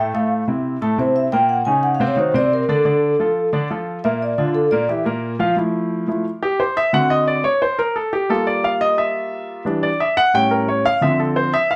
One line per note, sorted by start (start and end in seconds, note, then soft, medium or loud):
0.00 0.11 A2 medium
0.00 0.11 A3 medium
0.00 0.11 A4 medium
0.00 0.13 E5 medium
0.14 0.41 A2 medium
0.14 0.42 A3 medium
0.14 0.42 A4 medium
0.14 0.25 F5 medium
0.48 0.75 C3 medium
0.48 0.76 C4 medium
0.48 0.76 E4 medium
0.81 0.95 A2 medium
0.81 0.95 A3 medium
0.81 0.96 A4 medium
0.81 0.98 A5 medium
0.98 1.26 C3 medium
0.98 1.26 C4 medium
0.98 1.26 E4 medium
0.98 1.15 C5 medium
1.16 1.32 E5 medium
1.32 1.60 A#2 medium
1.32 1.61 A#3 medium
1.32 1.61 A#4 medium
1.32 1.49 G5 loud
1.49 1.66 F#5 medium
1.65 1.94 C#3 medium
1.65 1.94 C#4 medium
1.65 1.95 D#4 medium
1.65 1.82 G#5 loud
1.83 1.94 F#5 medium
1.95 2.06 F5 medium
2.00 2.14 C3 medium
2.00 2.14 C4 loud
2.00 2.15 C5 medium
2.07 2.18 C#5 medium
2.16 2.31 D#3 medium
2.16 2.31 D#4 medium
2.16 2.31 F#4 medium
2.16 2.35 C5 medium
2.34 2.62 C3 medium
2.34 2.62 C4 medium
2.34 2.62 C5 medium
2.34 2.52 D5 loud
2.53 2.69 A#4 medium
2.69 2.82 D3 medium
2.69 2.83 D4 medium
2.69 3.50 A4 medium
2.69 2.83 D5 medium
2.85 3.13 D3 medium
2.85 3.13 D4 medium
2.85 3.13 D5 medium
3.20 3.47 F3 medium
3.20 3.47 F4 medium
3.20 3.48 A4 medium
3.53 3.67 D3 medium
3.53 3.67 D4 medium
3.53 3.67 D5 medium
3.70 3.98 F3 medium
3.70 3.98 F4 medium
3.70 3.99 A4 medium
4.04 4.32 A#2 medium
4.04 4.33 A#3 medium
4.04 4.33 A#4 medium
4.04 4.21 E5 loud
4.22 4.38 D5 medium
4.38 4.66 D3 medium
4.38 4.66 D4 medium
4.38 4.55 F4 medium
4.38 4.66 F4 medium
4.55 4.72 A4 medium
4.71 4.86 A#2 medium
4.71 4.86 A#3 medium
4.71 4.86 A#4 medium
4.71 4.88 D5 medium
4.89 5.03 E3 medium
4.89 5.03 E4 medium
4.89 5.03 G4 medium
4.89 5.00 E5 medium
5.05 5.34 A#2 medium
5.05 5.34 A#3 medium
5.05 5.34 A#4 medium
5.39 5.54 F3 medium
5.39 5.54 F4 medium
5.39 5.54 F5 medium
5.57 6.06 F3 medium
5.57 6.06 A3 medium
5.57 6.06 E4 medium
6.08 6.24 F3 medium
6.08 6.24 A3 soft
6.08 6.24 E4 medium
6.43 6.59 G4 medium
6.60 6.76 C5 medium
6.77 6.93 E5 medium
6.93 7.42 D3 medium
6.93 7.42 C4 medium
6.93 7.42 F#4 medium
6.93 7.10 F#5 medium
7.10 7.27 D#5 loud
7.28 7.44 D5 medium
7.44 7.61 C#5 medium
7.62 7.78 C5 medium
7.79 7.95 A#4 medium
7.96 8.12 A4 medium
8.13 8.29 G4 medium
8.29 9.62 G3 medium
8.29 9.62 A#3 medium
8.29 9.62 F4 medium
8.29 8.47 A4 medium
8.47 8.63 D5 medium
8.64 8.81 F5 medium
8.81 8.97 D#5 medium
8.98 9.62 E5 medium
9.65 9.88 E3 medium
9.65 9.89 G3 medium
9.65 9.89 D4 medium
9.83 10.00 D5 medium
10.00 10.17 E5 medium
10.17 10.34 F#5 loud
10.34 10.82 A2 medium
10.34 10.83 G3 soft
10.34 10.83 C#4 medium
10.34 10.51 G5 loud
10.51 10.68 A#4 medium
10.68 10.85 C#5 medium
10.86 11.02 F5 loud
11.01 11.50 D3 medium
11.01 11.51 F3 soft
11.01 11.51 C4 medium
11.01 11.19 E5 medium
11.20 11.36 A4 medium
11.36 11.53 C5 medium
11.54 11.70 E5 loud
11.71 11.76 F5 medium